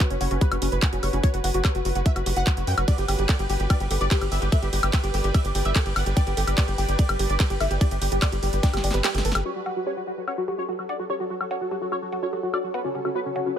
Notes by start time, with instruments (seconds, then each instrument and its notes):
Already playing: ambient pad F#4 C#5 F#5, synth drone B4
0.00 synth arpeggio sound F#4, analog synth lead B4, kick, clap, closed hi-hat
0.10 analog synth bass F#1, analog synth lead C#4, closed hi-hat
0.21 analog synth bass F#1, analog synth lead C#4, synth arpeggio sound F#5, open hi-hat
0.31 analog synth bass F#1, analog synth lead C#4, synth arpeggio sound F#4, closed hi-hat
0.41 synth arpeggio sound G4, analog synth lead B4, kick, closed hi-hat
0.52 analog synth bass F#1, analog synth lead C#4, synth arpeggio sound F#4, closed hi-hat, high woodblock
0.62 analog synth bass F#1, analog synth lead C#4, synth arpeggio sound F#4, open hi-hat
0.72 analog synth bass F#1, analog synth lead B4, closed hi-hat
0.82 analog synth lead C#4, synth arpeggio sound F#5, kick, clap, closed hi-hat
0.93 analog synth bass F#1, analog synth lead C#4, synth arpeggio sound F#4, closed hi-hat
1.03 analog synth bass F#1, synth arpeggio sound G4, analog synth lead C#5, open hi-hat, high woodblock
1.13 analog synth bass F#1, analog synth lead C#4, synth arpeggio sound F#4, closed hi-hat
1.23 synth arpeggio sound F#4, analog synth lead C#5, kick, closed hi-hat
1.34 analog synth bass F#1, analog synth lead F#4, closed hi-hat
1.44 analog synth bass F#1, analog synth lead F#4, synth arpeggio sound F#5, open hi-hat
1.54 analog synth bass F#1, analog synth lead F#4, synth arpeggio sound F#4, closed hi-hat
1.65 synth arpeggio sound G4, analog synth lead C#5, kick, clap, closed hi-hat, high woodblock
1.75 analog synth bass F#1, analog synth lead F#4, synth arpeggio sound F#4, closed hi-hat
1.85 analog synth bass F#1, synth arpeggio sound F#4, analog synth lead F#4, open hi-hat
1.95 analog synth bass F#1, analog synth lead F#4, closed hi-hat
2.06 analog synth lead E5, synth arpeggio sound F#5, kick, closed hi-hat
2.16 analog synth bass F#1, analog synth lead F#4, synth arpeggio sound F#4, closed hi-hat, high woodblock
2.26 analog synth bass F#1, analog synth lead F#4, synth arpeggio sound G4, open hi-hat
2.37 analog synth bass F#1, synth arpeggio sound F#4, analog synth lead F#5, closed hi-hat
2.47 analog synth lead F#4, synth arpeggio sound F#4, kick, clap, closed hi-hat
2.57 analog synth bass F#1, analog synth lead F#4, closed hi-hat
2.67 analog synth bass F#2, synth arpeggio sound F#5, analog synth lead G5, open hi-hat
2.78 analog synth bass F#1, analog synth lead F#4, synth arpeggio sound F#4, closed hi-hat, high woodblock
2.88 ambient pad G4, synth arpeggio sound G4, analog synth lead D5, kick, closed hi-hat, ride
2.96 analog synth bass G1, analog synth lead G4, ambient pad D5, closed hi-hat
3.08 analog synth bass G1, analog synth lead G4, synth arpeggio sound G5, ambient pad G5, open hi-hat, high woodblock
3.19 analog synth bass G1, analog synth lead G4, synth arpeggio sound G4, closed hi-hat
3.29 synth arpeggio sound A4, analog synth lead D5, kick, clap, closed hi-hat, ride
3.39 analog synth bass G1, synth arpeggio sound G4, analog synth lead G4, closed hi-hat
3.50 analog synth bass G1, analog synth lead G4, synth arpeggio sound G4, open hi-hat
3.60 analog synth bass G1, analog synth lead G4, closed hi-hat
3.70 analog synth lead D5, synth arpeggio sound G5, kick, closed hi-hat, ride, high woodblock
3.80 analog synth bass G1, synth arpeggio sound G4, analog synth lead G4, closed hi-hat
3.91 analog synth bass G1, analog synth lead G4, synth arpeggio sound A4, open hi-hat
4.01 analog synth bass G1, synth arpeggio sound G4, analog synth lead D5, closed hi-hat
4.11 synth arpeggio sound G4, analog synth lead G4, kick, clap, closed hi-hat, ride
4.21 analog synth bass G1, analog synth lead G4, closed hi-hat, high woodblock
4.32 analog synth bass G1, analog synth lead E5, synth arpeggio sound G5, open hi-hat
4.42 analog synth bass G1, synth arpeggio sound G4, analog synth lead G4, closed hi-hat
4.52 synth arpeggio sound A4, analog synth lead E5, kick, closed hi-hat, ride
4.62 analog synth bass G1, analog synth lead G4, synth arpeggio sound G4, closed hi-hat
4.73 analog synth bass G1, analog synth lead G4, synth arpeggio sound G4, open hi-hat
4.83 analog synth bass G1, analog synth lead G4, closed hi-hat, high woodblock
4.93 analog synth lead E5, synth arpeggio sound G5, kick, clap, closed hi-hat, ride
5.04 analog synth bass G1, analog synth lead G4, synth arpeggio sound G4, closed hi-hat
5.14 analog synth bass G1, analog synth lead G4, synth arpeggio sound A4, open hi-hat
5.24 analog synth bass G1, analog synth lead G4, synth arpeggio sound G4, closed hi-hat
5.34 synth arpeggio sound G4, analog synth lead E5, kick, closed hi-hat, ride, high woodblock
5.45 analog synth bass G1, analog synth lead G4, closed hi-hat
5.55 analog synth bass G1, analog synth lead G4, synth arpeggio sound G5, open hi-hat
5.65 analog synth bass G1, synth arpeggio sound G4, analog synth lead E5, closed hi-hat
5.76 analog synth lead G4, synth arpeggio sound A4, kick, clap, closed hi-hat, ride
5.86 analog synth bass G1, analog synth lead G4, synth arpeggio sound G4, closed hi-hat
5.96 analog synth bass G1, synth arpeggio sound G4, analog synth lead F#5, open hi-hat, high woodblock
6.06 analog synth bass G1, analog synth lead G4, closed hi-hat
6.17 analog synth lead D5, synth arpeggio sound G5, kick, closed hi-hat, ride
6.27 analog synth bass G1, synth arpeggio sound G4, analog synth lead G4, closed hi-hat
6.37 analog synth bass G1, analog synth lead G4, synth arpeggio sound A4, open hi-hat
6.47 analog synth bass G1, synth arpeggio sound G4, analog synth lead G4, closed hi-hat, high woodblock
6.58 synth arpeggio sound G4, analog synth lead D5, kick, clap, closed hi-hat, ride
6.68 analog synth bass G1, analog synth lead G4, closed hi-hat
6.78 analog synth bass G1, analog synth lead G4, synth arpeggio sound G5, open hi-hat
6.89 analog synth bass G1, synth arpeggio sound G4, analog synth lead G4, closed hi-hat
6.99 synth arpeggio sound A4, analog synth lead D5, kick, closed hi-hat, ride
7.09 analog synth bass G1, synth arpeggio sound G4, analog synth lead G4, closed hi-hat, high woodblock
7.19 analog synth bass G1, synth arpeggio sound G4, analog synth lead G4, open hi-hat
7.30 analog synth bass G1, analog synth lead D5, closed hi-hat
7.40 analog synth lead G4, synth arpeggio sound G5, kick, clap, closed hi-hat, ride
7.50 analog synth bass G1, synth arpeggio sound G4, analog synth lead G4, closed hi-hat
7.60 analog synth bass G1, synth arpeggio sound A4, analog synth lead E5, open hi-hat, high woodblock
7.71 analog synth bass G1, synth arpeggio sound G4, analog synth lead G4, closed hi-hat
7.81 synth arpeggio sound G4, analog synth lead D5, kick, closed hi-hat, ride
7.91 analog synth bass G1, analog synth lead G4, closed hi-hat
8.02 analog synth bass G1, analog synth lead G4, synth arpeggio sound G5, open hi-hat
8.12 analog synth bass G1, synth arpeggio sound G4, analog synth lead G4, closed hi-hat
8.22 synth arpeggio sound A4, analog synth lead D5, kick, clap, closed hi-hat, ride, high woodblock
8.32 analog synth bass G1, synth arpeggio sound G4, analog synth lead G4, closed hi-hat
8.43 analog synth bass G1, synth arpeggio sound G4, analog synth lead G4, open hi-hat
8.53 analog synth bass G1, analog synth lead G4, closed hi-hat
8.63 analog synth lead D5, synth arpeggio sound G5, kick, snare, closed hi-hat, ride
8.73 analog synth bass G1, synth arpeggio sound G4, analog synth lead G4, snare, closed hi-hat, high woodblock
8.84 analog synth bass G1, analog synth lead G4, synth arpeggio sound D5, open hi-hat
8.91 analog synth bass G1, synth arpeggio sound G4, analog synth lead B4, snare, closed hi-hat
9.04 synth arpeggio sound G4, analog synth lead G4, snare, clap, closed hi-hat, ride
9.15 analog synth bass G1, analog synth lead G4, synth arpeggio sound A4, snare, closed hi-hat
9.25 analog synth bass G1, analog synth lead A4, synth arpeggio sound B4, open hi-hat
9.32 analog synth bass G1, analog synth lead G4, synth arpeggio sound A4, snare, closed hi-hat, high woodblock
9.45 synth arpeggio sound F#4, ambient pad F#4, synth drone A4, analog synth lead C#5
9.56 analog synth lead F#4, ambient pad C#5
9.66 analog synth lead F#4, synth arpeggio sound F#5, high woodblock
9.76 synth arpeggio sound F#4, analog synth lead F#4, ambient pad F#5
9.86 synth arpeggio sound G4, analog synth lead C#5
9.97 synth arpeggio sound F#4, analog synth lead F#4
10.07 synth arpeggio sound F#4, analog synth lead F#4
10.17 analog synth lead F#4
10.28 analog synth lead C#5, synth arpeggio sound F#5, high woodblock
10.38 synth arpeggio sound F#4, analog synth lead F#4
10.48 analog synth lead F#4, synth arpeggio sound G4
10.58 synth arpeggio sound F#4, analog synth lead C#5
10.69 synth arpeggio sound F#4, analog synth lead F#4
10.79 analog synth lead F#4, high woodblock
10.89 analog synth lead D5, synth arpeggio sound F#5
10.99 synth arpeggio sound F#4, analog synth lead F#4
11.10 synth arpeggio sound G4, analog synth lead C#5
11.20 synth arpeggio sound F#4, analog synth lead F#4
11.30 synth arpeggio sound F#4, analog synth lead F#4
11.41 analog synth lead F#4, high woodblock
11.51 analog synth lead C#5, synth arpeggio sound F#5
11.61 analog synth lead F#4, synth arpeggio sound F#4
11.71 analog synth lead F#4, synth arpeggio sound G4
11.82 synth arpeggio sound F#4, analog synth lead F#4
11.92 synth arpeggio sound F#4, analog synth lead C#5, high woodblock
12.02 analog synth lead F#4
12.12 analog synth lead F#4, synth arpeggio sound F#5
12.23 synth arpeggio sound F#4, analog synth lead C#5
12.33 analog synth lead F#4, synth arpeggio sound G4
12.43 analog synth lead F#4, synth arpeggio sound F#4
12.54 synth arpeggio sound F#4, analog synth lead D5, high woodblock
12.64 analog synth lead F#4
12.74 analog synth lead B4, synth arpeggio sound F#5
12.84 analog synth lead C#4, synth arpeggio sound F#4
12.95 analog synth lead C#4, synth arpeggio sound G4
13.05 analog synth lead C#4, synth arpeggio sound F#4, high woodblock
13.15 synth arpeggio sound F#4, analog synth lead B4
13.26 analog synth lead C#4
13.36 analog synth lead C#4, synth arpeggio sound F#5
13.46 analog synth lead C#4, synth arpeggio sound F#4